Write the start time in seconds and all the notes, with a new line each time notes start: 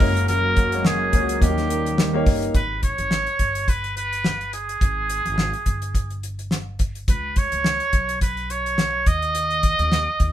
Already playing: C#3 A#4
0.00 F#1 F#3 A#3 C#4 F#4 A#4 C#5, kick, open hi-hat
0.17 closed hi-hat
0.28 F#3 C#4 F#4 A#4, closed hi-hat
0.56 C#4 F#4 A#4, kick, closed hi-hat
0.72 G#3 C#4 F#4 C#5, closed hi-hat
0.78 A#3
0.85 F#3 C#4 F#4 G#4 A#4, snare
1.12 C#2 A#3 C#4 F#4 A#4 C#5, kick, closed hi-hat
1.29 closed hi-hat
1.41 D#2 D#3 G3 A#3 C#4 D#4 F#4 G4 A#4 C#5, kick, closed hi-hat
1.49 G4
1.58 snare, closed hi-hat
1.69 C#4 D#4 A#4, closed hi-hat
1.86 closed hi-hat
1.98 D#3 G3 C#4 D#4 A#4, snare
2.13 A#3 D#4 G4 C#5
2.25 G1 C#4 D#4 A#4, kick, open hi-hat
2.42 closed hi-hat
2.54 G#1 B4, kick, closed hi-hat
2.83 C#5, kick, closed hi-hat
2.98 G#1, closed hi-hat
3.11 snare
3.27 closed hi-hat
3.39 G1, kick, closed hi-hat
3.55 closed hi-hat
3.68 B4, kick, closed hi-hat
3.84 closed hi-hat
3.97 B4, closed hi-hat
4.13 closed hi-hat
4.24 snare
4.41 closed hi-hat
4.53 G#4, closed hi-hat
4.69 closed hi-hat
4.81 G#1, kick, closed hi-hat
5.09 closed hi-hat
5.25 G#1, closed hi-hat
5.38 snare
5.53 closed hi-hat
5.66 G1, kick, closed hi-hat
5.82 closed hi-hat
5.95 kick, closed hi-hat
6.10 closed hi-hat
6.23 closed hi-hat
6.39 closed hi-hat
6.51 snare
6.79 kick, closed hi-hat
6.95 closed hi-hat
7.08 C#2 B4, kick, closed hi-hat
7.36 C#5, kick, closed hi-hat
7.52 C#2, closed hi-hat
7.64 snare
7.80 closed hi-hat
7.93 B1, kick, closed hi-hat
8.09 closed hi-hat
8.21 B4, kick, closed hi-hat
8.37 closed hi-hat
8.50 C#5, closed hi-hat
8.66 closed hi-hat
8.78 snare
9.06 D#2 D#5, kick, closed hi-hat
9.22 closed hi-hat
9.35 closed hi-hat
9.50 closed hi-hat
9.63 kick, closed hi-hat
9.79 D#2, closed hi-hat
9.92 snare
10.20 D#2, kick, closed hi-hat